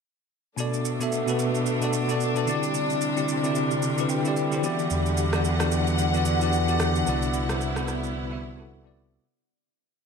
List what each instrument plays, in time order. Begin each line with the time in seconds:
0.56 tine electric piano B2 B3 F#4 A4 D5, string section B2 A3 D4, shaker
0.74 shaker
0.85 shaker
0.99 tine electric piano B2 B3 F#4 A4 E5, shaker
1.12 shaker
1.26 tine electric piano B2 B3 F#4 A4 B4, shaker
1.39 shaker
1.55 shaker
1.66 shaker
1.80 tine electric piano B2 B3 F#4 A4 D5, shaker
1.93 shaker
2.07 tine electric piano B2 B3 F#4 A4 D5, shaker
2.21 shaker
2.34 tine electric piano B2 B3 F#4 A4 D5, shaker
2.46 string section C3 G3, tine electric piano D3 C4 E4 F#4 D5, shaker
2.55 tine electric piano G4
2.63 shaker
2.74 shaker
2.90 shaker
3.01 shaker
3.15 tine electric piano D3 C4 E4 G4 D5, shaker
3.28 shaker
3.42 tine electric piano D3 C4 E4 F#4 D5, shaker
3.52 tine electric piano G4, shaker
3.71 shaker
3.82 shaker
3.96 tine electric piano D3 C4 E4 G4 B4, shaker
4.09 tine electric piano G5, shaker
4.23 tine electric piano D3 C4 E4 G4 D5, shaker
4.36 tine electric piano E5, shaker
4.51 tine electric piano D3 C4 E4 G4 C5, shaker
4.62 string section D3 F#5, tine electric piano E3 B3 F#4 G4 D5, shaker
4.79 shaker
4.90 sub bass E2, shaker
5.06 shaker
5.17 shaker
5.32 tine electric piano E3 B3 F#4 G4 D5, cross-stick, shaker
5.45 shaker
5.59 tine electric piano E3 B3 F#4 G4 D5, cross-stick, shaker
5.72 shaker
5.87 shaker
5.99 shaker
6.13 tine electric piano E3 B3 F#4 G4 D5, shaker
6.25 shaker
6.40 tine electric piano E3 B3 F#4 G4 D5, shaker
6.53 shaker
6.67 tine electric piano E3 B3 F#4 G4 D5, shaker
6.80 cross-stick, shaker
6.95 shaker
7.05 sub bass C2, tine electric piano C3 G3 B3 E4 F#4 D5, string section B3 E4, shaker
7.22 shaker
7.34 shaker
7.48 tine electric piano C3 G3 B3 E4 F#4 C5, cross-stick, shaker
7.61 shaker
7.75 tine electric piano C3 G3 B3 E4 F#4 B4, cross-stick, shaker
7.88 cross-stick, shaker
8.04 shaker
8.29 tine electric piano C3 G3 B3 E4 F#4 E5
8.56 tine electric piano C3 G3 B3 E4 F#4 A4
8.83 tine electric piano C3 G3 B3 E4 F#4 D5